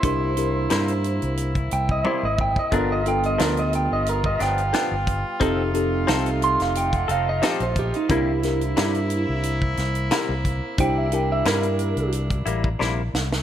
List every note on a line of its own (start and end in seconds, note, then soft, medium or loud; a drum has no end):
0.00 0.67 C2 loud
0.00 2.68 A#3 medium
0.00 2.68 C4 medium
0.00 0.32 D4 medium
0.00 2.68 E4 loud
0.00 0.32 E4 medium
0.00 0.32 G4 medium
0.00 kick loud
0.00 closed hi-hat medium
0.04 0.33 A#4 medium
0.04 1.35 C5 medium
0.37 1.51 D4 medium
0.37 1.51 E4 medium
0.37 1.52 G4 medium
0.37 1.52 A#4 medium
0.37 closed hi-hat medium
0.70 1.18 G2 loud
0.70 0.91 C3 medium
0.70 0.92 G3 medium
0.70 0.92 A#3 medium
0.70 0.92 E4 medium
0.70 snare loud
0.70 closed hi-hat medium
0.88 closed hi-hat soft
1.04 closed hi-hat medium
1.22 1.68 C2 medium
1.22 closed hi-hat soft
1.37 closed hi-hat medium
1.55 kick medium
1.55 closed hi-hat soft
1.71 2.03 C2 medium
1.71 1.89 G5 loud
1.71 closed hi-hat medium
1.89 2.06 D#5 medium
1.89 kick medium
2.05 2.26 C3 medium
2.05 2.26 G3 medium
2.05 2.26 A#3 medium
2.05 2.27 E4 medium
2.05 2.23 C5 medium
2.05 high tom medium
2.23 2.53 G#1 loud
2.23 2.39 D#5 medium
2.38 2.57 G5 loud
2.38 kick medium
2.56 2.73 D#5 medium
2.56 kick medium
2.72 3.36 G1 medium
2.72 2.93 G2 medium
2.72 2.93 F3 medium
2.72 5.39 G3 medium
2.72 3.01 B3 medium
2.72 5.38 B3 medium
2.72 2.94 B3 medium
2.72 3.01 D4 medium
2.72 2.94 D4 medium
2.72 3.01 F4 medium
2.72 8.06 F4 medium
2.72 3.01 A4 medium
2.72 2.90 A#4 medium
2.72 kick loud
2.72 closed hi-hat medium
2.92 3.07 D#5 medium
3.06 4.20 B3 medium
3.06 4.20 D4 medium
3.06 4.20 F4 medium
3.06 4.21 A4 medium
3.06 3.24 G5 medium
3.06 closed hi-hat medium
3.23 3.40 D#5 medium
3.23 closed hi-hat soft
3.38 3.87 D2 medium
3.38 3.60 G2 medium
3.38 3.60 F3 medium
3.38 3.61 B3 medium
3.38 3.61 D4 medium
3.38 3.58 A#4 loud
3.38 snare loud
3.38 closed hi-hat medium
3.57 3.74 D#5 medium
3.57 closed hi-hat soft
3.73 3.91 G5 medium
3.73 closed hi-hat medium
3.91 4.36 G1 medium
3.91 4.07 D#5 medium
4.06 4.25 A#4 medium
4.06 closed hi-hat medium
4.24 4.41 D#5 medium
4.24 kick medium
4.40 4.71 G1 loud
4.40 4.62 F3 soft
4.40 4.62 B3 soft
4.40 4.61 D4 soft
4.40 5.72 G5 loud
4.40 snare soft
4.40 closed hi-hat medium
4.58 closed hi-hat soft
4.73 4.94 G2 medium
4.73 4.95 F3 medium
4.73 4.95 B3 medium
4.73 4.95 D4 medium
4.73 snare loud
4.73 closed hi-hat medium
4.92 5.22 G1 loud
5.07 kick medium
5.07 closed hi-hat medium
5.40 6.04 F1 loud
5.40 5.61 F3 medium
5.40 8.07 A3 medium
5.40 5.69 C4 medium
5.40 5.62 C4 medium
5.40 5.69 D#4 medium
5.40 8.07 D#4 medium
5.40 5.62 D#4 medium
5.40 5.70 G4 medium
5.40 5.70 A4 medium
5.40 5.62 A4 medium
5.40 kick loud
5.40 closed hi-hat medium
5.74 6.89 C4 medium
5.74 6.89 D#4 medium
5.74 6.89 G4 medium
5.74 6.89 A4 medium
5.74 closed hi-hat medium
6.07 6.56 C2 medium
6.07 6.29 F3 medium
6.07 6.29 C4 medium
6.07 6.29 D#4 medium
6.07 6.30 A4 loud
6.07 snare loud
6.07 closed hi-hat medium
6.26 closed hi-hat soft
6.42 6.60 C6 loud
6.42 closed hi-hat medium
6.60 7.05 F1 medium
6.60 6.76 F5 medium
6.60 snare soft
6.60 closed hi-hat soft
6.75 6.96 G5 medium
6.75 closed hi-hat medium
6.93 7.10 F#5 medium
6.93 kick medium
6.93 closed hi-hat soft
7.08 7.39 F1 medium
7.08 7.31 C4 soft
7.08 7.30 D#4 soft
7.08 7.29 A4 medium
7.08 7.27 F5 medium
7.08 closed hi-hat medium
7.29 7.43 D#5 medium
7.42 7.63 F3 medium
7.42 7.64 C4 medium
7.42 7.64 D#4 medium
7.42 7.61 G4 medium
7.42 7.64 A4 medium
7.42 snare loud
7.42 closed hi-hat medium
7.60 7.91 A#1 medium
7.60 7.77 C5 medium
7.60 closed hi-hat soft
7.76 7.95 G4 loud
7.76 kick medium
7.76 closed hi-hat medium
7.94 8.11 D#4 medium
7.94 closed hi-hat soft
8.09 8.73 C2 loud
8.09 8.31 C3 medium
8.09 8.31 G3 medium
8.09 13.43 A#3 medium
8.09 8.31 A#3 medium
8.09 10.75 C4 medium
8.09 8.38 D4 medium
8.09 13.43 E4 loud
8.09 8.38 E4 medium
8.09 8.32 E4 medium
8.09 9.41 E4 loud
8.09 8.39 G4 medium
8.09 8.39 A#4 medium
8.09 kick loud
8.09 closed hi-hat medium
8.43 9.57 D4 medium
8.43 9.58 E4 medium
8.43 9.58 G4 medium
8.43 9.58 A#4 medium
8.43 snare soft
8.43 closed hi-hat medium
8.61 closed hi-hat soft
8.77 9.25 G2 medium
8.77 8.98 C3 medium
8.77 8.98 G3 medium
8.77 8.99 A#3 medium
8.77 8.99 E4 medium
8.77 snare loud
8.77 closed hi-hat medium
8.94 closed hi-hat soft
9.10 closed hi-hat medium
9.29 9.74 C2 medium
9.43 closed hi-hat medium
9.62 kick medium
9.77 10.08 C2 loud
9.77 snare soft
9.77 closed hi-hat medium
9.95 closed hi-hat soft
10.11 10.32 C3 medium
10.11 10.33 G3 loud
10.11 10.33 A#3 loud
10.11 10.33 E4 medium
10.11 snare loud
10.11 closed hi-hat medium
10.29 10.60 C2 medium
10.45 kick medium
10.45 closed hi-hat medium
10.78 11.42 C2 loud
10.78 11.07 D4 medium
10.78 13.43 D4 medium
10.78 11.07 E4 medium
10.78 11.08 G4 medium
10.78 11.08 C5 medium
10.78 10.98 G5 loud
10.78 kick loud
10.78 closed hi-hat medium
10.98 11.14 E5 medium
11.12 12.26 D4 medium
11.12 12.26 E4 medium
11.12 12.27 G4 medium
11.12 12.27 A#4 medium
11.12 11.30 G5 loud
11.12 closed hi-hat medium
11.32 11.46 E5 medium
11.45 11.93 G2 medium
11.45 11.67 C3 medium
11.45 11.67 G3 medium
11.45 11.67 A#3 medium
11.45 11.67 E4 medium
11.45 12.12 A#4 loud
11.45 snare loud
11.45 closed hi-hat medium
11.63 closed hi-hat soft
11.79 closed hi-hat medium
11.96 12.42 C2 medium
11.96 closed hi-hat soft
12.12 closed hi-hat medium
12.30 kick medium
12.30 closed hi-hat soft
12.46 12.77 A1 medium
12.46 12.68 G3 soft
12.46 12.68 A#3 medium
12.46 12.67 E4 medium
12.46 closed hi-hat medium
12.64 kick medium
12.79 13.10 A#1 medium
12.79 13.01 C3 medium
12.79 13.01 G3 medium
12.79 13.01 A#3 loud
12.79 13.02 E4 loud
12.79 snare medium
13.14 13.43 C2 medium
13.14 snare medium
13.33 snare medium